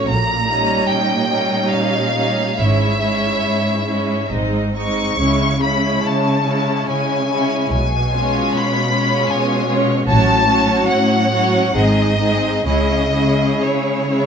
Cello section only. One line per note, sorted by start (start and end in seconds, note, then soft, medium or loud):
0.07 0.79 A#2 soft
0.89 1.62 A#2 soft
1.72 2.49 A#2 soft
2.59 3.34 G#2 soft
3.45 4.21 G#2 soft
4.32 5.09 G#2 soft
5.19 5.95 C#3 soft
6.05 6.79 C#3 soft
6.89 7.63 C#3 soft
7.73 8.44 B2 soft
8.52 9.21 B2 soft
9.31 9.99 B2 soft
10.08 10.80 A2 medium
10.90 11.66 A2 medium
11.76 12.56 G#2 soft
12.67 13.51 C#3 soft
13.62 14.26 C#3 soft